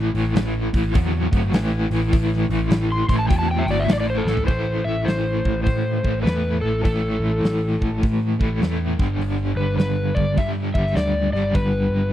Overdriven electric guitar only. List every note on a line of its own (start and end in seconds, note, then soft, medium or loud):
0.00 0.11 A2 medium
0.00 0.11 E3 medium
0.14 0.34 A2 medium
0.14 0.34 E3 medium
0.36 0.70 A2 medium
0.36 0.70 E3 medium
0.73 0.93 A2 medium
0.73 0.93 E3 medium
0.94 1.29 A2 medium
0.94 1.29 F#3 medium
1.31 1.51 A2 medium
1.31 1.52 F#3 medium
1.54 1.88 A2 medium
1.54 1.88 E3 loud
1.91 2.11 A2 medium
1.91 2.11 E3 medium
2.12 2.47 A2 medium
2.12 2.47 E3 loud
2.51 2.70 A2 medium
2.51 2.70 E3 medium
2.72 3.06 A2 medium
2.72 3.06 E3 medium
3.09 3.28 A2 medium
3.09 3.29 E3 medium
3.30 3.64 A2 medium
3.30 3.64 F#3 medium
3.68 3.87 A2 medium
3.68 3.88 F#3 medium
3.88 4.23 A2 medium
3.88 4.23 E3 medium
4.27 4.46 A2 medium
4.27 4.47 E3 medium
4.47 6.01 A2 medium
4.47 6.02 E3 medium
4.47 6.02 A3 medium
6.03 6.22 A2 medium
6.03 6.23 E3 medium
6.03 6.24 A3 medium
6.23 6.82 A2 medium
6.23 6.83 E3 medium
6.23 6.83 A3 medium
6.83 8.37 A2 medium
6.83 8.37 E3 medium
6.83 8.38 A3 loud
8.39 8.60 A2 medium
8.39 8.60 E3 medium
8.39 8.60 A3 medium
8.61 8.96 A2 medium
8.61 8.97 E3 medium
8.61 8.98 A3 medium
8.98 10.37 G2 medium
8.98 10.37 D3 medium
8.98 10.40 G3 medium
10.37 10.73 G2 medium
10.37 10.73 D3 medium
10.37 10.74 G3 medium
10.75 11.32 G2 medium
10.75 11.32 D3 medium
10.75 11.32 G3 medium
11.33 12.13 G2 medium
11.33 12.13 D3 medium
11.33 12.13 G3 loud